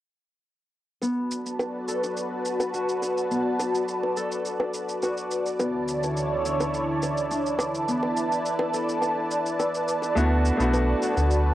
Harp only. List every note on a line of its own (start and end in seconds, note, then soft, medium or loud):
1.02 3.30 B3 medium
1.88 4.08 A4 medium
2.73 5.02 F#4 medium
3.31 5.59 B3 medium
4.17 6.36 A4 medium
5.02 7.46 F#4 medium
5.59 7.88 B3 medium
6.45 9.06 E4 medium
7.31 10.11 D4 medium
7.88 10.16 B3 medium
8.74 10.93 A4 medium
9.59 11.54 E4 medium
10.16 11.54 B3 medium
11.02 11.54 A4 medium